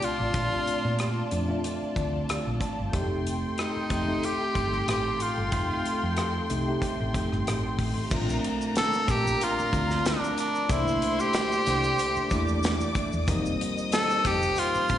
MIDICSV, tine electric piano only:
0, 0, Header, 1, 2, 480
1, 0, Start_track
1, 0, Key_signature, -2, "major"
1, 0, Tempo, 646552
1, 255, Time_signature, 4, 2, 24, 8
1, 11123, End_track
2, 0, Start_track
2, 0, Title_t, "Tine electric piano"
2, 0, Program_c, 0, 4
2, 0, Control_c, 0, 64, 127
2, 0, Note_on_c, 0, 57, 67
2, 0, Note_on_c, 0, 60, 65
2, 0, Note_on_c, 0, 62, 64
2, 0, Note_on_c, 0, 65, 76
2, 0, Note_on_c, 0, 67, 67
2, 254, Note_off_c, 0, 57, 0
2, 254, Note_on_c, 0, 57, 64
2, 257, Note_off_c, 0, 60, 0
2, 257, Note_on_c, 0, 60, 58
2, 258, Note_off_c, 0, 62, 0
2, 258, Note_on_c, 0, 62, 53
2, 264, Note_off_c, 0, 65, 0
2, 264, Note_on_c, 0, 65, 75
2, 715, Note_off_c, 0, 57, 0
2, 716, Note_off_c, 0, 60, 0
2, 717, Note_off_c, 0, 62, 0
2, 719, Note_off_c, 0, 65, 0
2, 971, Note_on_c, 0, 57, 68
2, 975, Note_on_c, 0, 60, 67
2, 979, Note_on_c, 0, 62, 69
2, 982, Note_on_c, 0, 65, 78
2, 1055, Note_off_c, 0, 57, 0
2, 1057, Note_off_c, 0, 60, 0
2, 1059, Note_off_c, 0, 62, 0
2, 1061, Note_off_c, 0, 65, 0
2, 1101, Note_on_c, 0, 57, 77
2, 1104, Note_on_c, 0, 60, 79
2, 1110, Note_on_c, 0, 62, 73
2, 1112, Note_on_c, 0, 65, 94
2, 1702, Note_on_c, 0, 77, 61
2, 1706, Note_off_c, 0, 57, 0
2, 1708, Note_off_c, 0, 60, 0
2, 1711, Note_off_c, 0, 62, 0
2, 1711, Note_off_c, 0, 65, 0
2, 1922, Note_off_c, 0, 77, 0
2, 1938, Note_on_c, 0, 81, 64
2, 2160, Note_off_c, 0, 81, 0
2, 2172, Note_on_c, 0, 57, 69
2, 2173, Note_on_c, 0, 60, 74
2, 2176, Note_on_c, 0, 63, 73
2, 2181, Note_off_c, 0, 67, 0
2, 2181, Note_on_c, 0, 67, 90
2, 2185, Control_c, 0, 64, 0
2, 2330, Control_c, 0, 64, 127
2, 2635, Note_off_c, 0, 57, 0
2, 2635, Note_off_c, 0, 60, 0
2, 2637, Note_off_c, 0, 63, 0
2, 2639, Note_off_c, 0, 67, 0
2, 2896, Note_on_c, 0, 57, 63
2, 2899, Note_on_c, 0, 60, 52
2, 2900, Note_on_c, 0, 63, 53
2, 2903, Note_on_c, 0, 67, 64
2, 2979, Note_off_c, 0, 57, 0
2, 2981, Note_off_c, 0, 60, 0
2, 2981, Note_off_c, 0, 63, 0
2, 2983, Note_off_c, 0, 67, 0
2, 3022, Note_on_c, 0, 57, 68
2, 3026, Note_on_c, 0, 60, 65
2, 3030, Note_on_c, 0, 63, 61
2, 3033, Note_on_c, 0, 69, 81
2, 3628, Note_off_c, 0, 57, 0
2, 3629, Note_off_c, 0, 60, 0
2, 3632, Note_off_c, 0, 63, 0
2, 3633, Note_off_c, 0, 69, 0
2, 4097, Note_on_c, 0, 57, 69
2, 4100, Note_on_c, 0, 60, 57
2, 4104, Note_on_c, 0, 63, 63
2, 4107, Note_on_c, 0, 69, 70
2, 4558, Note_off_c, 0, 57, 0
2, 4560, Note_off_c, 0, 60, 0
2, 4562, Note_off_c, 0, 63, 0
2, 4563, Note_off_c, 0, 69, 0
2, 4821, Note_on_c, 0, 57, 72
2, 4825, Note_on_c, 0, 60, 63
2, 4825, Note_on_c, 0, 63, 68
2, 4828, Note_on_c, 0, 67, 84
2, 4903, Note_off_c, 0, 57, 0
2, 4904, Note_off_c, 0, 63, 0
2, 4905, Note_off_c, 0, 60, 0
2, 4906, Note_off_c, 0, 67, 0
2, 4955, Note_on_c, 0, 57, 88
2, 4958, Note_on_c, 0, 60, 73
2, 4963, Note_on_c, 0, 63, 71
2, 4965, Note_on_c, 0, 67, 96
2, 5555, Note_off_c, 0, 57, 0
2, 5557, Note_off_c, 0, 60, 0
2, 5559, Note_off_c, 0, 63, 0
2, 5560, Note_off_c, 0, 67, 0
2, 6023, Note_on_c, 0, 57, 87
2, 6028, Control_c, 0, 64, 0
2, 6028, Note_on_c, 0, 60, 71
2, 6031, Note_on_c, 0, 62, 79
2, 6034, Note_on_c, 0, 65, 91
2, 6165, Control_c, 0, 64, 127
2, 6642, Note_off_c, 0, 57, 0
2, 6644, Note_off_c, 0, 60, 0
2, 6646, Note_off_c, 0, 62, 0
2, 6647, Note_off_c, 0, 65, 0
2, 7219, Note_on_c, 0, 57, 64
2, 7225, Note_on_c, 0, 60, 65
2, 7228, Note_on_c, 0, 65, 78
2, 7229, Note_on_c, 0, 62, 69
2, 7680, Note_off_c, 0, 57, 0
2, 7683, Note_off_c, 0, 60, 0
2, 7684, Note_off_c, 0, 65, 0
2, 7685, Note_off_c, 0, 62, 0
2, 7935, Note_on_c, 0, 57, 73
2, 7939, Note_on_c, 0, 58, 73
2, 7941, Note_on_c, 0, 62, 75
2, 7942, Note_on_c, 0, 64, 79
2, 7950, Control_c, 0, 64, 0
2, 8092, Control_c, 0, 64, 127
2, 8557, Note_off_c, 0, 57, 0
2, 8559, Note_off_c, 0, 58, 0
2, 8560, Note_off_c, 0, 62, 0
2, 8561, Note_off_c, 0, 64, 0
2, 9135, Note_on_c, 0, 57, 84
2, 9138, Note_on_c, 0, 58, 72
2, 9142, Note_on_c, 0, 62, 84
2, 9145, Note_on_c, 0, 64, 94
2, 9597, Note_off_c, 0, 57, 0
2, 9599, Note_off_c, 0, 58, 0
2, 9601, Note_off_c, 0, 62, 0
2, 9602, Note_off_c, 0, 64, 0
2, 9855, Note_on_c, 0, 55, 87
2, 9858, Note_on_c, 0, 58, 86
2, 9861, Note_on_c, 0, 60, 84
2, 9863, Note_on_c, 0, 63, 98
2, 9870, Control_c, 0, 64, 0
2, 9984, Control_c, 0, 64, 127
2, 10477, Note_off_c, 0, 55, 0
2, 10479, Note_off_c, 0, 58, 0
2, 10480, Note_off_c, 0, 60, 0
2, 10481, Note_off_c, 0, 63, 0
2, 11062, Note_on_c, 0, 55, 70
2, 11065, Note_on_c, 0, 57, 49
2, 11067, Note_on_c, 0, 60, 67
2, 11069, Note_on_c, 0, 62, 83
2, 11114, Note_off_c, 0, 57, 0
2, 11123, Note_off_c, 0, 55, 0
2, 11123, Note_off_c, 0, 60, 0
2, 11123, Note_off_c, 0, 62, 0
2, 11123, End_track
0, 0, End_of_file